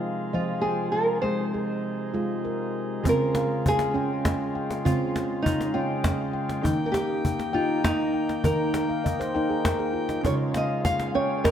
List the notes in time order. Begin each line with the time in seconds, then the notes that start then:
Already playing: C3 F3 G#3 F4 F5 G5
0.33 F3 F4 D#5
0.61 G#4 G5
0.92 A#4
1.22 G#3 D#4 C5
1.54 G#4
2.14 G#3 F4
2.45 A#4
3.04 C#3 G#3 C4 F4, cajon bass
3.09 A#4
3.35 F5, cajon slap
3.66 G#4, cajon bass
3.79 cajon slap
3.94 C#4 G5
4.25 D#5, cajon bass, cajon slap
4.55 G5
4.71 cajon slap
4.85 C#3 C4 F4, cajon bass
5.16 cajon slap
5.42 D#4, cajon bass
5.61 cajon slap
5.74 C#4 F4 G5
6.04 D#5, cajon bass, cajon slap
6.33 G5
6.49 cajon slap
6.63 D#3 A#3 D#4 G5, cajon bass
6.86 A#4
6.92 G4 G5, cajon slap
7.25 cajon bass
7.39 cajon slap
7.53 D#4 F4 G5
7.84 D#4, cajon bass, cajon slap
8.14 G5
8.29 cajon slap
8.44 D#3 D#4 A#4, cajon bass
8.74 cajon slap
8.89 F5, cajon slap
9.04 D#5, cajon bass
9.20 C5, cajon slap
9.34 D#4 A#4 G5, cajon slap
9.49 G#4
9.64 A#4, cajon bass, cajon slap
9.79 G#4, cajon slap
9.93 F4
10.09 D#4, cajon slap
10.23 C#3 G#3 C#4 F4 C#5, cajon bass
10.54 D#5 F5, cajon slap
10.85 F5, cajon bass
11.00 cajon slap
11.15 C#4 C#5 G5
11.44 A#4 D#5, cajon bass, cajon slap